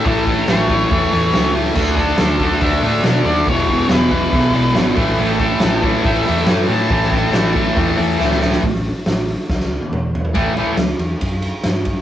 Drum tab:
CC |----------------|x---------------|----------------|----------------|
RD |----------------|----------------|----------------|----------------|
HH |o-o-o-o-o-o-o-o-|--o-o-o-o-o-o-o-|o-o-o-o-o-o-o-o-|o-o-o-o-o-o-o-o-|
SD |----o-------o---|----o-------o---|-o--o-------o---|----o-------o---|
T1 |----------------|----------------|----------------|----------------|
T2 |----------------|----------------|----------------|----------------|
FT |----------------|----------------|----------------|----------------|
BD |o-o---o-o-------|o-o---o-o-------|o-o---o-o-----o-|--o---o-o-------|

CC |----------------|----------------|----------------|
RD |----------------|----------------|x-x-x-x-x-x-x-x-|
HH |o-o-o-o-o-o-----|o-o-o-o---------|----------------|
SD |-o--o-------oooo|-o--o---oo------|----o-------o---|
T1 |----------------|-----------o----|----------------|
T2 |----------------|------------o---|----------------|
FT |----------------|--------------oo|----------------|
BD |o-o---o-o-------|o-------o-------|o-------o-----o-|